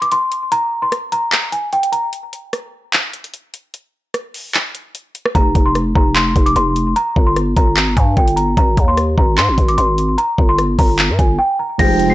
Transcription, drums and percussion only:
0.02 closed hi-hat medium
0.12 closed hi-hat medium
0.32 closed hi-hat medium
0.52 closed hi-hat medium
0.92 cross-stick medium
0.92 closed hi-hat medium
1.12 closed hi-hat medium
1.32 clap loud
1.32 closed hi-hat medium
1.52 closed hi-hat medium
1.73 closed hi-hat medium
1.83 closed hi-hat medium
1.93 closed hi-hat medium
2.13 closed hi-hat medium
2.33 closed hi-hat medium
2.53 cross-stick medium
2.53 closed hi-hat medium
2.93 clap loud
2.93 closed hi-hat medium
3.13 closed hi-hat medium
3.24 closed hi-hat medium
3.34 closed hi-hat medium
3.54 closed hi-hat medium
3.74 closed hi-hat medium
4.14 cross-stick medium
4.14 closed hi-hat medium
4.34 open hi-hat medium
4.54 clap loud
4.54 closed hi-hat medium
4.75 closed hi-hat medium
4.95 closed hi-hat medium
5.15 closed hi-hat medium
5.26 cross-stick loud
5.35 kick loud
5.35 closed hi-hat medium
5.55 kick medium
5.55 closed hi-hat medium
5.75 cross-stick medium
5.75 closed hi-hat medium
5.95 kick medium
6.16 clap loud
6.16 closed hi-hat medium
6.36 kick loud
6.36 closed hi-hat medium
6.46 closed hi-hat medium
6.56 closed hi-hat medium
6.76 closed hi-hat medium
6.96 closed hi-hat medium
7.16 kick medium
7.36 cross-stick medium
7.36 closed hi-hat medium
7.57 kick medium
7.57 closed hi-hat medium
7.77 clap loud
7.77 closed hi-hat medium
7.97 kick loud
7.97 closed hi-hat medium
8.17 kick medium
8.17 closed hi-hat soft
8.28 closed hi-hat medium
8.37 closed hi-hat medium
8.57 kick loud
8.57 closed hi-hat medium
8.77 kick medium
8.77 closed hi-hat medium
8.97 cross-stick medium
8.97 closed hi-hat medium
9.18 kick medium
9.38 clap loud
9.38 closed hi-hat medium
9.58 kick loud
9.58 closed hi-hat medium
9.68 closed hi-hat medium
9.78 closed hi-hat medium
9.98 closed hi-hat medium
10.18 closed hi-hat medium
10.38 kick medium
10.58 cross-stick medium
10.58 closed hi-hat medium
10.79 kick medium
10.79 open hi-hat medium
10.99 clap loud
10.99 closed hi-hat medium
11.19 kick loud
11.19 closed hi-hat medium
11.79 kick loud
11.79 closed hi-hat medium
11.79 crash loud
11.99 closed hi-hat medium

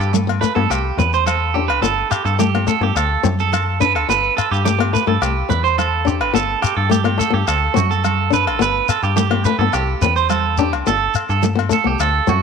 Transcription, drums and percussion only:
0.00 shekere soft
0.14 high conga medium
0.14 shekere medium
0.29 low agogo medium
0.43 muted conga soft
0.43 shekere medium
0.71 muted conga soft
0.71 low agogo medium
0.71 shekere medium
0.99 high conga medium
0.99 shekere medium
1.13 shekere soft
1.27 high conga medium
1.27 low agogo medium
1.27 shekere medium
1.70 low agogo medium
1.83 muted conga soft
1.83 shekere medium
2.11 low agogo medium
2.11 shekere medium
2.26 shekere soft
2.40 high conga medium
2.40 shekere medium
2.55 low agogo medium
2.67 muted conga soft
2.67 shekere medium
2.96 muted conga soft
2.96 low agogo medium
2.96 shekere medium
3.24 muted conga soft
3.24 high conga medium
3.24 shekere medium
3.39 shekere soft
3.53 high conga medium
3.53 low agogo medium
3.53 shekere medium
3.81 shekere medium
3.96 low agogo medium
4.10 muted conga soft
4.10 shekere medium
4.38 low agogo medium
4.38 shekere medium
4.54 shekere soft
4.66 high conga medium
4.66 shekere medium
4.80 low agogo medium
4.95 shekere medium
5.22 muted conga soft
5.22 low agogo medium
5.22 shekere medium
5.50 muted conga soft
5.50 high conga medium
5.50 shekere medium
5.65 shekere soft
5.79 high conga medium
5.79 low agogo medium
5.79 shekere medium
6.08 shekere medium
6.21 low agogo medium
6.35 muted conga soft
6.35 shekere medium
6.62 low agogo medium
6.62 shekere medium
6.91 high conga medium
6.91 shekere medium
7.05 low agogo medium
7.20 muted conga soft
7.20 shekere medium
7.48 muted conga soft
7.48 low agogo medium
7.48 shekere medium
7.77 muted conga soft
7.77 high conga medium
7.77 shekere loud
7.91 shekere soft
8.04 high conga medium
8.04 low agogo medium
8.04 shekere medium
8.33 shekere medium
8.47 low agogo medium
8.61 muted conga soft
8.61 shekere medium
8.89 low agogo medium
8.89 shekere loud
9.03 shekere soft
9.17 high conga medium
9.17 shekere medium
9.31 low agogo medium
9.45 shekere loud
9.73 muted conga soft
9.73 low agogo medium
9.73 shekere medium
10.02 muted conga soft
10.02 shekere medium
10.16 shekere soft
10.30 high conga medium
10.30 low agogo medium
10.30 shekere medium
10.58 shekere medium
10.73 low agogo medium
10.86 muted conga soft
10.86 shekere medium
11.15 low agogo medium
11.15 shekere medium
11.30 shekere soft
11.43 high conga medium
11.43 shekere medium
11.59 low agogo medium
11.71 muted conga soft
11.71 shekere medium
11.99 muted conga soft
11.99 low agogo medium
11.99 shekere medium
12.27 muted conga soft
12.27 high conga medium
12.27 shekere medium

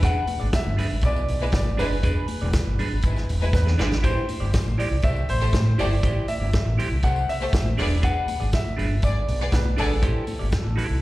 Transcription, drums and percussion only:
0.03 kick loud
0.03 closed hi-hat medium
0.03 tambourine medium
0.03 muted conga soft
0.27 open hi-hat medium
0.27 tambourine medium
0.27 high conga medium
0.40 tambourine soft
0.53 kick loud
0.53 snare loud
0.53 closed hi-hat medium
0.53 tambourine loud
0.53 muted conga soft
0.67 high conga medium
0.78 open hi-hat medium
0.78 tambourine medium
0.78 muted conga soft
0.78 low conga medium
1.01 kick loud
1.01 closed hi-hat medium
1.01 tambourine medium
1.01 muted conga soft
1.16 tambourine soft
1.28 open hi-hat medium
1.28 tambourine medium
1.28 muted conga soft
1.42 high conga medium
1.52 kick loud
1.52 snare loud
1.52 closed hi-hat medium
1.52 tambourine loud
1.52 muted conga soft
1.65 high conga medium
1.78 open hi-hat medium
1.78 tambourine medium
1.78 low conga medium
1.91 tambourine soft
2.03 kick loud
2.03 closed hi-hat medium
2.03 tambourine medium
2.03 muted conga soft
2.28 open hi-hat medium
2.28 tambourine medium
2.28 muted conga soft
2.28 high conga medium
2.41 tambourine soft
2.53 kick loud
2.53 snare loud
2.53 closed hi-hat medium
2.53 tambourine loud
2.67 high conga medium
2.79 open hi-hat medium
2.79 tambourine medium
2.79 muted conga soft
2.79 low conga medium
3.02 kick loud
3.02 closed hi-hat medium
3.02 tambourine medium
3.16 snare soft
3.16 tambourine soft
3.29 open hi-hat medium
3.29 tambourine medium
3.29 muted conga soft
3.41 tambourine soft
3.41 high conga medium
3.53 kick loud
3.53 snare medium
3.53 tambourine loud
3.66 snare medium
3.66 high conga medium
3.79 snare loud
3.79 tambourine medium
3.79 muted conga soft
3.79 low conga medium
3.91 snare medium
3.91 tambourine soft
4.04 kick loud
4.04 closed hi-hat medium
4.04 tambourine medium
4.28 open hi-hat medium
4.28 tambourine medium
4.28 high conga medium
4.41 tambourine soft
4.54 kick loud
4.54 snare loud
4.54 closed hi-hat medium
4.54 tambourine loud
4.54 muted conga soft
4.68 high conga medium
4.80 open hi-hat medium
4.80 tambourine medium
4.80 muted conga soft
4.80 low conga medium
5.02 kick loud
5.02 closed hi-hat medium
5.02 tambourine medium
5.16 tambourine soft
5.29 open hi-hat medium
5.29 tambourine medium
5.41 tambourine soft
5.41 high conga medium
5.53 kick loud
5.53 snare loud
5.53 closed hi-hat medium
5.53 tambourine loud
5.65 high conga medium
5.79 open hi-hat medium
5.79 tambourine medium
5.79 muted conga soft
5.79 low conga medium
6.03 kick loud
6.03 closed hi-hat medium
6.03 tambourine medium
6.28 open hi-hat medium
6.28 tambourine medium
6.28 high conga medium
6.53 kick loud
6.53 snare loud
6.53 closed hi-hat medium
6.53 tambourine loud
6.67 high conga medium
6.79 open hi-hat medium
6.79 tambourine medium
6.79 muted conga soft
6.79 low conga medium
7.02 kick loud
7.02 closed hi-hat medium
7.02 tambourine medium
7.02 muted conga soft
7.16 tambourine soft
7.29 open hi-hat medium
7.29 tambourine medium
7.29 muted conga soft
7.41 high conga medium
7.53 kick loud
7.53 snare loud
7.53 closed hi-hat medium
7.53 tambourine loud
7.65 high conga medium
7.78 open hi-hat medium
7.78 tambourine medium
7.78 muted conga soft
7.78 low conga medium
8.02 kick loud
8.02 closed hi-hat medium
8.02 tambourine medium
8.02 muted conga soft
8.28 open hi-hat medium
8.28 tambourine medium
8.28 muted conga soft
8.28 high conga medium
8.40 tambourine soft
8.53 kick loud
8.53 snare loud
8.53 closed hi-hat medium
8.53 tambourine loud
8.67 high conga medium
8.79 open hi-hat medium
8.79 tambourine medium
8.79 low conga medium
9.02 kick loud
9.02 closed hi-hat medium
9.02 tambourine medium
9.28 open hi-hat medium
9.28 tambourine medium
9.28 muted conga soft
9.41 high conga medium
9.52 kick loud
9.52 snare loud
9.52 closed hi-hat medium
9.52 tambourine medium
9.52 muted conga soft
9.65 high conga medium
9.78 open hi-hat medium
9.78 tambourine medium
9.78 low conga medium
10.03 kick loud
10.03 closed hi-hat medium
10.03 tambourine medium
10.27 open hi-hat medium
10.27 tambourine medium
10.27 high conga medium
10.52 kick loud
10.52 snare loud
10.52 closed hi-hat medium
10.52 tambourine loud
10.52 muted conga soft
10.66 high conga medium
10.78 open hi-hat medium
10.78 tambourine medium
10.78 muted conga soft
10.78 low conga medium

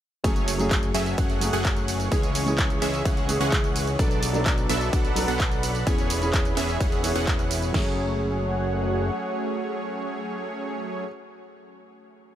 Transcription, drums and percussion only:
0.24 kick loud
0.24 closed hi-hat loud
0.24 tambourine soft
0.36 closed hi-hat soft
0.36 tambourine soft
0.48 open hi-hat loud
0.48 ride medium
0.48 tambourine medium
0.59 closed hi-hat soft
0.59 tambourine soft
0.71 kick loud
0.71 clap loud
0.71 closed hi-hat medium
0.71 tambourine soft
0.83 closed hi-hat soft
0.83 tambourine soft
0.94 open hi-hat loud
0.94 ride medium
0.94 tambourine medium
1.06 closed hi-hat soft
1.06 tambourine soft
1.18 kick loud
1.18 closed hi-hat loud
1.18 tambourine soft
1.30 closed hi-hat soft
1.30 tambourine soft
1.41 open hi-hat loud
1.41 ride medium
1.41 tambourine medium
1.53 closed hi-hat soft
1.53 tambourine soft
1.65 kick loud
1.65 clap loud
1.65 closed hi-hat loud
1.65 tambourine soft
1.77 closed hi-hat soft
1.77 tambourine soft
1.88 open hi-hat medium
1.88 ride medium
1.88 tambourine medium
2.00 closed hi-hat soft
2.00 tambourine soft
2.12 kick loud
2.12 closed hi-hat loud
2.12 tambourine soft
2.23 closed hi-hat soft
2.23 tambourine soft
2.35 open hi-hat loud
2.35 ride medium
2.35 tambourine medium
2.47 closed hi-hat soft
2.47 tambourine soft
2.58 kick loud
2.58 clap loud
2.58 closed hi-hat medium
2.58 tambourine soft
2.70 closed hi-hat soft
2.70 tambourine soft
2.82 clap soft
2.82 open hi-hat loud
2.82 ride medium
2.82 tambourine medium
2.94 closed hi-hat soft
2.94 tambourine soft
3.05 kick loud
3.05 closed hi-hat loud
3.05 tambourine soft
3.17 closed hi-hat soft
3.17 tambourine soft
3.29 open hi-hat loud
3.29 ride medium
3.29 tambourine medium
3.41 closed hi-hat soft
3.41 tambourine soft
3.52 kick loud
3.52 clap loud
3.52 closed hi-hat loud
3.52 tambourine soft
3.64 closed hi-hat soft
3.64 tambourine soft
3.76 open hi-hat medium
3.76 ride medium
3.76 tambourine medium
3.87 closed hi-hat soft
3.87 tambourine soft
3.99 kick loud
3.99 closed hi-hat medium
3.99 tambourine soft
4.11 closed hi-hat soft
4.11 tambourine soft
4.23 open hi-hat loud
4.23 ride medium
4.23 tambourine medium
4.34 closed hi-hat soft
4.34 tambourine soft
4.46 kick loud
4.46 clap loud
4.46 closed hi-hat medium
4.46 tambourine soft
4.58 closed hi-hat soft
4.58 tambourine soft
4.69 open hi-hat loud
4.69 ride medium
4.69 tambourine medium
4.81 closed hi-hat soft
4.81 tambourine soft
4.93 kick loud
4.93 closed hi-hat medium
4.93 tambourine soft
5.05 closed hi-hat soft
5.05 tambourine soft
5.16 open hi-hat loud
5.16 ride medium
5.16 tambourine medium
5.28 closed hi-hat soft
5.28 tambourine soft
5.40 kick loud
5.40 clap loud
5.40 closed hi-hat medium
5.40 tambourine soft
5.52 closed hi-hat soft
5.52 tambourine soft
5.63 open hi-hat loud
5.63 ride medium
5.63 tambourine medium
5.75 closed hi-hat soft
5.75 tambourine soft
5.87 kick loud
5.87 closed hi-hat medium
5.87 tambourine soft
5.98 closed hi-hat soft
5.98 tambourine soft
6.10 open hi-hat loud
6.10 ride medium
6.10 tambourine medium
6.22 closed hi-hat soft
6.22 tambourine soft
6.34 kick loud
6.34 clap loud
6.34 closed hi-hat medium
6.34 tambourine soft
6.45 closed hi-hat soft
6.45 tambourine soft
6.57 clap soft
6.57 open hi-hat loud
6.57 ride medium
6.57 tambourine medium
6.69 closed hi-hat soft
6.69 tambourine soft
6.80 kick loud
6.80 closed hi-hat medium
6.80 tambourine soft
6.92 closed hi-hat soft
6.92 tambourine soft
7.04 open hi-hat loud
7.04 ride medium
7.04 tambourine medium
7.16 closed hi-hat soft
7.16 tambourine soft
7.27 kick loud
7.27 clap loud
7.27 closed hi-hat medium
7.27 tambourine soft
7.39 closed hi-hat soft
7.39 tambourine soft
7.51 open hi-hat loud
7.51 ride medium
7.51 tambourine medium
7.62 closed hi-hat soft
7.62 tambourine soft
7.74 kick loud
7.74 snare loud
7.74 crash medium

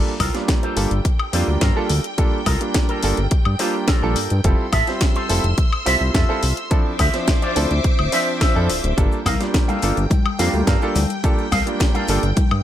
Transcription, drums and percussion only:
0.20 kick medium
0.20 open hi-hat loud
0.20 high woodblock medium
0.35 snare soft
0.35 closed hi-hat medium
0.48 kick loud
0.48 snare loud
0.48 closed hi-hat medium
0.63 closed hi-hat soft
0.77 open hi-hat loud
0.91 closed hi-hat soft
1.05 kick loud
1.05 closed hi-hat medium
1.19 high woodblock medium
1.33 open hi-hat loud
1.61 kick loud
1.61 snare loud
1.61 closed hi-hat medium
1.90 open hi-hat loud
2.04 closed hi-hat soft
2.18 kick loud
2.18 closed hi-hat medium
2.46 kick medium
2.46 open hi-hat loud
2.46 high woodblock medium
2.61 closed hi-hat medium
2.74 kick loud
2.74 snare loud
2.74 closed hi-hat medium
2.89 closed hi-hat soft
3.03 open hi-hat loud
3.17 closed hi-hat soft
3.31 kick loud
3.31 closed hi-hat medium
3.45 high woodblock medium
3.59 open hi-hat loud
3.88 kick loud
3.88 snare loud
3.88 open hi-hat medium
4.16 open hi-hat loud
4.30 closed hi-hat soft
4.44 kick loud
4.44 closed hi-hat medium
4.73 kick medium
4.73 open hi-hat loud
4.73 high woodblock medium
4.87 snare soft
4.87 closed hi-hat soft
5.01 kick loud
5.01 snare loud
5.01 closed hi-hat medium
5.16 closed hi-hat soft
5.30 open hi-hat loud
5.44 closed hi-hat soft
5.58 kick loud
5.58 closed hi-hat medium
5.73 high woodblock medium
5.86 open hi-hat loud
6.14 kick loud
6.14 snare loud
6.14 closed hi-hat medium
6.43 open hi-hat loud
6.57 closed hi-hat soft
6.71 kick loud
6.71 closed hi-hat medium
6.99 kick medium
6.99 open hi-hat loud
6.99 high woodblock medium
7.14 snare soft
7.14 closed hi-hat soft
7.28 kick loud
7.28 snare loud
7.28 closed hi-hat medium
7.42 closed hi-hat soft
7.56 open hi-hat loud
7.71 closed hi-hat soft
7.84 kick loud
7.84 closed hi-hat medium
7.99 high woodblock medium
8.12 open hi-hat loud
8.41 kick loud
8.41 snare loud
8.41 open hi-hat medium
8.70 open hi-hat loud
8.84 closed hi-hat soft
8.98 kick loud
8.98 closed hi-hat medium
8.98 cabasa soft
9.12 cabasa soft
9.26 kick medium
9.26 open hi-hat loud
9.26 high conga medium
9.26 cabasa medium
9.26 high woodblock medium
9.41 snare soft
9.41 closed hi-hat soft
9.41 cabasa soft
9.54 kick loud
9.54 snare loud
9.54 closed hi-hat medium
9.54 cabasa soft
9.69 closed hi-hat soft
9.69 high conga medium
9.69 cabasa soft
9.82 open hi-hat loud
9.82 cabasa medium
9.97 closed hi-hat soft
9.97 cabasa soft
10.10 kick loud
10.10 closed hi-hat medium
10.10 high conga medium
10.10 cabasa medium
10.26 high woodblock medium
10.39 open hi-hat loud
10.39 cabasa loud
10.53 high conga medium
10.53 cabasa soft
10.67 kick loud
10.67 snare loud
10.67 closed hi-hat medium
10.67 cabasa soft
10.82 cabasa soft
10.95 open hi-hat loud
10.95 high conga loud
10.95 cabasa medium
11.10 closed hi-hat soft
11.10 cabasa soft
11.24 kick loud
11.24 closed hi-hat medium
11.24 cabasa soft
11.38 cabasa soft
11.52 kick medium
11.52 open hi-hat loud
11.52 high conga medium
11.52 cabasa medium
11.52 high woodblock medium
11.66 closed hi-hat soft
11.66 cabasa soft
11.80 kick loud
11.80 snare loud
11.80 closed hi-hat medium
11.80 cabasa medium
11.94 closed hi-hat soft
11.94 high conga medium
11.94 cabasa soft
12.08 open hi-hat loud
12.08 cabasa medium
12.23 closed hi-hat soft
12.23 cabasa soft
12.36 kick loud
12.36 closed hi-hat medium
12.36 high conga medium
12.36 cabasa soft
12.51 high woodblock medium

